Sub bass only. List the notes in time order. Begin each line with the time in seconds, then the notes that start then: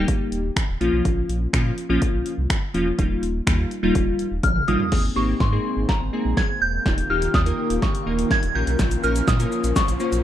0.32 D#1
0.69 D#1
0.81 A#1
0.93 B1
1.05 A#1
1.29 A#1
1.53 A#2
1.90 A#1
2.14 A#1
2.38 C2
2.74 E1
2.99 D#1
3.23 D#1
3.47 D#2
3.83 D#1
3.95 D#1
4.20 D#1
4.32 D#1
4.43 A#1
4.68 A1
4.92 G#1
5.16 G#1
5.40 G#2
5.77 G#1
6.01 G#1
6.25 A#1
6.62 E1
6.86 D#1
7.10 D#1
7.34 D#2
7.70 D#1
8.07 D#1
8.43 D#1
8.55 A#1
8.67 B1
8.79 A#1
9.04 A#1
9.28 A#2
9.64 A#1
9.88 A#1
10.12 A#1